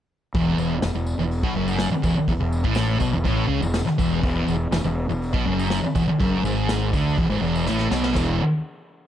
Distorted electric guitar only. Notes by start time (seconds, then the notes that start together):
0.35 E2
0.59 E2
0.83 E2
0.95 E2
1.19 E2
1.43 B2
1.56 F#2
1.91 muted distorted electric guitar stroke
2.03 E2
2.16 muted distorted electric guitar stroke
2.29 E2
2.40 E2
2.64 A2
2.99 B2
3.13 E2
3.25 A2
3.48 C#3
3.61 E2
3.86 muted distorted electric guitar stroke
3.98 E2
4.23 E2
4.48 E2
4.73 E2
4.85 E2
5.09 E2
5.33 B2
5.46 F#2
5.83 muted distorted electric guitar stroke
5.95 E2
6.08 muted distorted electric guitar stroke
6.19 F#2
6.45 G#2
6.94 D3
7.18 E2
7.29 G#2
7.42 E2
7.67 A2
7.91 B2
8.15 E2 B2 E3